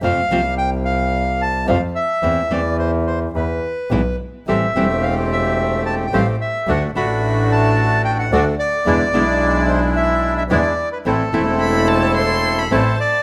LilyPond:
<<
  \new Staff \with { instrumentName = "Violin" } { \time 4/4 \key a \minor \tempo 4 = 109 r1 | r1 | r1 | r1 |
r1 | r4 b''8 a''8 c'''8. b''16 a''4 | }
  \new Staff \with { instrumentName = "Bandoneon" } { \time 4/4 \key a \minor f''4 g''8 f''4 a''8 f''8 e''8~ | e''8 d''8 c''8 c''8 b'4. r8 | e''4 f''8 e''4 a''16. g''32 f''8 e''8 | fis''8 b''4 a''4 g''16 fis''16 d''8 d''8~ |
d''4. c''8 e''8. e''16 d''8. b'16 | a'2. c''8 d''8 | }
  \new Staff \with { instrumentName = "Bandoneon" } { \time 4/4 \key a \minor r1 | r1 | <a c' g'>8 <a c' g'>2~ <a c' g'>8 <a c' g'>8 r8 | <a d' fis'>8 <a d' fis'>2~ <a d' fis'>8 <a d' fis'>8 r8 |
<gis d' e'>8 <gis d' e'>2~ <gis d' e'>8 <gis d' e'>8 r8 | <a c' e'>8 <a c' e'>2~ <a c' e'>8 <a c' e'>8 r8 | }
  \new Staff \with { instrumentName = "Nylon-string guitar" } { \time 4/4 \key a \minor <c f a c' f'>8 <c f a c' f'>8 r2 <c f a c' f'>8 r8 | <e a c' e'>8 <e a c' e'>8 r2 <b, e gis b e'>8 r8 | <e g c' e'>8 <e g c' e'>8 r2 <e g c' e'>8 r8 | <d a d' fis'>8 <d a d' fis'>8 r2 <d a d' fis'>8 r8 |
<b, d gis b e'>8 <b, d gis b e'>8 r2 <b, d gis b e'>8 r8 | <e a c' e'>8 <e a c' e'>8 r2 <e a c' e'>8 r8 | }
  \new Staff \with { instrumentName = "Double bass" } { \clef bass \time 4/4 \key a \minor f,8 c,2~ c,8 f,8 r8 | e,8 e,4. e,8 r8 b,,8 r8 | a,,8 e,,2~ e,,8 a,,8 r8 | d,8 a,,2~ a,,8 d,8 r8 |
e,8 b,,2~ b,,8 e,8 r8 | a,,8 e,,2~ e,,8 a,,8 r8 | }
>>